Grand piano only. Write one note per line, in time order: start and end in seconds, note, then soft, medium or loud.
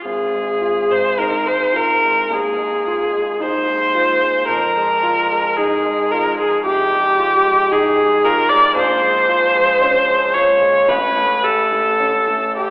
0.05 2.28 G#1 medium
0.34 0.79 G#3 soft
0.61 1.07 F4 soft
0.90 1.35 G#3 soft
1.18 1.64 D#4 soft
1.46 1.92 G#3 soft
1.73 2.19 F4 soft
2.03 2.48 G#3 soft
2.30 2.75 D#2 soft
2.58 3.03 G#3 soft
2.87 3.31 F4 soft
3.13 3.57 G#3 soft
3.40 3.84 D#4 medium
3.67 4.11 G#3 soft
3.95 4.38 F4 soft
4.21 4.49 G#3 soft
4.48 6.61 F2 soft
4.77 5.20 G#3 soft
5.03 5.47 F4 medium
5.31 5.74 G#3 medium
5.58 6.01 D#4 medium
5.85 6.28 G#3 soft
6.13 6.55 F4 soft
6.39 6.81 G#3 soft
6.66 7.08 C3 soft
6.93 7.35 G#3 soft
7.18 7.61 F4 soft
7.45 7.87 G#3 medium
7.72 8.14 D#4 medium
7.98 8.40 G#3 medium
8.24 8.66 F4 medium
8.50 8.76 G#3 soft
8.75 10.84 A#1 medium
9.02 9.44 G#3 soft
9.28 9.70 F4 soft
9.55 9.96 G#3 soft
9.81 10.23 C#4 soft
10.08 10.50 G#3 soft
10.34 10.78 F4 soft
10.61 10.88 G#3 soft
10.88 12.70 A1 medium
11.16 11.61 A3 soft
11.43 11.88 G4 soft
11.72 12.17 A3 soft
12.00 12.45 C#4 soft
12.28 12.70 A3 soft
12.57 12.70 G4 soft